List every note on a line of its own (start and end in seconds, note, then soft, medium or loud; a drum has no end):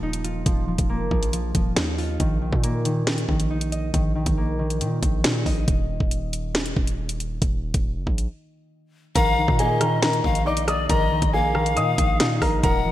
0.00 0.43 D#1 loud
0.00 0.45 F3 medium
0.00 0.89 A#3 medium
0.00 1.76 D#4 loud
0.00 0.28 D#5 medium
0.13 closed hi-hat medium
0.24 1.98 F4 medium
0.24 closed hi-hat medium
0.46 0.77 D#1 loud
0.46 0.67 F3 medium
0.46 kick loud
0.46 closed hi-hat medium
0.68 1.10 F3 medium
0.78 1.02 D#1 loud
0.78 kick medium
0.78 closed hi-hat medium
0.89 2.63 A#3 medium
1.00 1.11 F#1 loud
1.11 1.53 A#1 loud
1.11 1.32 F3 medium
1.11 kick loud
1.23 closed hi-hat medium
1.33 1.54 F3 medium
1.33 closed hi-hat medium
1.55 1.76 D#1 loud
1.55 2.25 F3 medium
1.55 kick loud
1.55 closed hi-hat medium
1.76 2.18 D#2 loud
1.76 3.50 D#4 loud
1.76 snare loud
1.76 closed hi-hat medium
1.98 4.50 F4 medium
1.98 open hi-hat medium
2.20 2.51 A#1 loud
2.20 2.40 D#3 medium
2.20 kick loud
2.20 closed hi-hat medium
2.41 2.84 D#3 medium
2.53 3.26 A#2 loud
2.53 kick loud
2.63 4.37 A#3 medium
2.63 closed hi-hat medium
2.85 3.06 D#3 medium
2.85 closed hi-hat medium
3.07 3.28 D#3 medium
3.07 snare loud
3.07 closed hi-hat soft
3.18 closed hi-hat medium
3.29 3.91 A#1 loud
3.29 3.93 D#3 medium
3.29 kick loud
3.40 closed hi-hat medium
3.50 5.24 D#4 medium
3.61 closed hi-hat medium
3.72 5.45 D#5 medium
3.72 closed hi-hat medium
3.94 4.25 A#1 loud
3.94 4.14 D#3 medium
3.94 kick loud
3.94 closed hi-hat medium
4.15 4.58 D#3 medium
4.26 4.82 A#1 loud
4.26 kick loud
4.26 closed hi-hat medium
4.37 7.59 A#3 medium
4.59 4.79 D#3 medium
4.70 closed hi-hat medium
4.81 5.01 A#2 loud
4.81 5.01 D#3 medium
4.81 closed hi-hat medium
5.02 5.23 A#1 loud
5.02 5.73 D#3 medium
5.02 kick loud
5.02 closed hi-hat medium
5.24 5.45 A#2 loud
5.24 7.95 D#4 medium
5.24 snare loud
5.24 closed hi-hat medium
5.46 5.67 A#1 loud
5.46 7.24 D#5 medium
5.46 kick medium
5.46 open hi-hat medium
5.68 5.99 D#1 loud
5.68 kick loud
5.68 closed hi-hat medium
6.00 6.73 D#1 loud
6.00 kick medium
6.11 closed hi-hat medium
6.33 closed hi-hat medium
6.55 snare loud
6.55 closed hi-hat soft
6.66 closed hi-hat medium
6.76 7.39 D#1 loud
6.76 kick loud
6.87 closed hi-hat medium
7.09 closed hi-hat medium
7.20 closed hi-hat medium
7.42 7.73 D#1 loud
7.42 kick loud
7.42 closed hi-hat medium
7.74 7.98 D#1 loud
7.74 kick loud
7.74 closed hi-hat medium
7.96 8.06 F#1 loud
8.07 8.28 A#1 loud
8.07 kick loud
8.18 closed hi-hat medium
9.15 9.47 A#1 loud
9.15 9.36 D#3 medium
9.15 9.57 A#4 medium
9.15 9.56 F5 loud
9.15 9.56 A#5 loud
9.15 kick loud
9.15 closed hi-hat medium
9.37 9.79 D#3 medium
9.48 10.21 A#2 loud
9.48 kick loud
9.59 11.33 A#3 medium
9.59 9.76 G#4 medium
9.59 10.20 D#5 medium
9.59 9.76 G#5 medium
9.59 closed hi-hat medium
9.81 10.01 D#3 medium
9.81 9.98 A#4 medium
9.81 9.97 A#5 medium
9.81 cross-stick medium
9.81 closed hi-hat medium
10.02 10.23 D#3 medium
10.02 10.44 A#4 medium
10.02 10.44 A#5 medium
10.02 snare loud
10.02 closed hi-hat soft
10.13 closed hi-hat medium
10.24 10.87 A#1 loud
10.24 10.88 D#3 medium
10.24 10.45 F5 medium
10.24 kick loud
10.35 closed hi-hat medium
10.46 12.20 D#4 medium
10.46 10.63 D5 medium
10.46 10.67 D#5 medium
10.46 10.63 D6 medium
10.57 closed hi-hat medium
10.68 10.88 D5 medium
10.68 12.41 D#5 medium
10.68 10.85 D#5 medium
10.68 10.84 D#6 medium
10.68 cross-stick loud
10.68 closed hi-hat medium
10.89 11.21 A#1 loud
10.89 11.10 D#3 medium
10.89 11.31 A#4 medium
10.89 11.30 D#5 loud
10.89 11.30 A#5 loud
10.89 kick loud
10.89 closed hi-hat medium
11.11 11.54 D#3 medium
11.22 11.78 A#1 loud
11.22 kick loud
11.22 closed hi-hat medium
11.33 12.92 A#3 medium
11.33 11.50 G#4 medium
11.33 12.40 F5 loud
11.33 11.50 G#5 medium
11.55 11.75 D#3 medium
11.55 11.72 A#4 medium
11.55 11.71 A#5 medium
11.55 cross-stick medium
11.66 closed hi-hat medium
11.76 11.97 A#2 loud
11.76 11.97 D#3 medium
11.76 12.38 D#5 medium
11.76 12.38 D#6 medium
11.76 closed hi-hat medium
11.98 12.19 A#1 loud
11.98 12.68 D#3 medium
11.98 kick loud
11.98 closed hi-hat medium
12.20 12.41 A#2 loud
12.20 12.92 D#4 loud
12.20 snare loud
12.20 closed hi-hat medium
12.42 12.63 A#1 loud
12.42 12.59 A#4 medium
12.42 12.92 D#5 medium
12.42 12.58 A#5 medium
12.42 kick loud
12.42 cross-stick medium
12.42 open hi-hat medium
12.63 12.92 D#1 loud
12.63 12.84 F3 medium
12.63 12.92 A#4 medium
12.63 12.92 F#5 loud
12.63 12.92 A#5 loud
12.63 kick loud
12.63 closed hi-hat medium
12.85 12.92 F3 medium